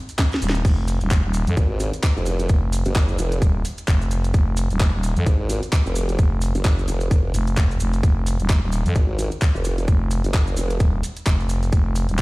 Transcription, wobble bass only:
1.57 1.91 G#1 loud
2.17 2.48 F1 loud
2.86 3.17 F#1 loud
3.19 3.40 F1 loud
5.26 5.61 G#1 loud
5.86 6.17 F1 loud
6.55 6.86 F#1 loud
6.88 7.09 F1 loud
7.11 7.33 F1 medium
8.96 9.30 G#1 loud
9.55 9.86 F1 loud
10.24 10.56 F#1 medium
10.57 10.79 F1 loud

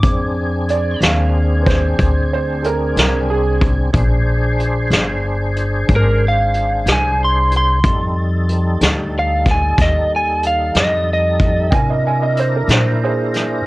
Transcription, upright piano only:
0.70 1.01 D5 medium
1.03 1.65 F5 medium
1.62 1.66 B4 soft
1.67 2.30 C5 medium
2.33 2.64 C5 medium
2.62 2.66 A4 medium
2.62 2.96 A#4 medium
2.99 3.29 A#4 medium
3.30 3.61 G#4 medium
11.70 11.74 G5 medium
11.70 11.88 G#5 medium
11.90 12.05 D#5 medium
12.07 12.21 G#5 medium
12.22 12.37 D#5 medium
12.40 12.54 C5 medium
12.56 12.70 A#4 medium
12.73 13.03 C5 medium
13.04 13.66 G#4 medium
13.04 13.66 C5 medium

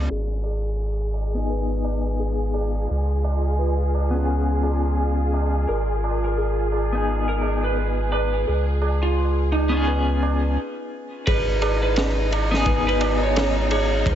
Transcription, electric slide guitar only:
5.69 6.18 A#4 medium
6.24 6.69 A#4 medium
7.29 7.60 A#4 medium
7.64 8.09 B4 medium
8.12 8.62 B4 medium
9.03 9.48 F4 medium
9.52 9.84 D#4 medium
11.27 11.76 B4 loud
11.83 12.27 B4 medium
12.88 13.18 B4 medium
13.23 13.67 C#5 medium
13.71 14.15 C#5 medium

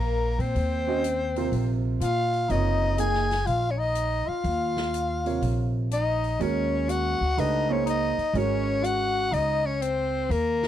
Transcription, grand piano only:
0.87 1.02 C#4 medium
0.87 1.03 F#4 medium
0.87 1.03 C5 medium
0.87 1.03 D#5 medium
1.37 1.98 C3 medium
1.37 1.98 F4 medium
1.37 1.99 A#4 medium
1.37 1.99 C5 medium
2.50 2.97 C3 medium
2.50 2.97 F4 medium
2.50 2.98 A#4 medium
2.50 2.98 C#5 medium
2.98 3.28 A#3 medium
2.98 3.28 D#4 medium
2.98 3.28 G#4 soft
2.98 3.28 A#4 medium
5.25 5.88 C3 medium
5.25 5.88 F4 soft
5.25 5.88 A#4 soft
5.25 5.88 C#5 medium
6.40 7.15 G#3 medium
6.40 7.15 C#4 medium
6.40 7.15 F#4 medium
6.40 7.15 A#4 medium
7.38 7.67 A3 medium
7.38 7.67 D4 medium
7.38 7.67 G4 medium
7.38 7.67 B4 medium
7.70 8.12 A#3 medium
7.70 8.13 D#4 medium
7.70 8.13 G#4 medium
7.70 8.13 C5 medium
8.35 9.72 G#3 medium
8.35 9.72 C#4 medium
8.35 9.72 F#4 medium
8.35 9.72 A#4 medium

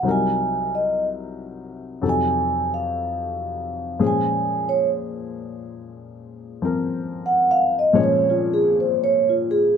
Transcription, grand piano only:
0.03 2.01 C2 soft
0.03 2.00 C3 soft
0.03 2.01 F#3 soft
0.03 2.01 D#4 soft
0.08 2.04 A#4 medium
2.02 3.99 F2 soft
2.02 4.00 C3 soft
2.02 4.00 F#3 soft
2.02 4.00 D#4 soft
2.02 4.00 A4 soft
3.99 7.92 A#2 soft
3.99 6.60 F3 soft
3.99 7.93 G#3 soft
3.99 7.93 C#4 soft
3.99 7.96 G#4 medium
6.62 7.92 F3 soft
6.62 7.95 C4 soft
6.62 7.96 A#4 soft
7.93 9.77 A#2 medium
7.93 9.77 F3 medium
7.93 9.77 G#3 soft
7.93 9.77 C#4 medium
7.93 9.77 C#5 medium

